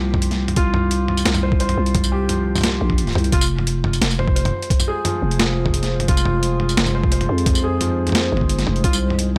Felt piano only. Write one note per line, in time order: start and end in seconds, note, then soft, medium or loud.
0.00 0.21 F3 medium
0.00 2.12 G4 medium
0.00 1.43 C5 medium
0.57 0.67 F4 loud
1.43 1.59 C5 medium
1.60 1.77 C5 medium
2.12 2.28 G4 medium
2.29 2.97 F3 medium
3.33 3.43 F4 loud
4.19 4.34 C5 medium
4.36 4.52 C5 medium
4.88 5.03 G#4 medium
5.05 5.72 F3 medium
6.09 6.19 F4 loud
6.95 7.11 C5 medium
7.12 7.28 C5 medium
7.64 7.79 G#4 medium
7.81 8.48 F3 medium
8.84 8.94 F4 loud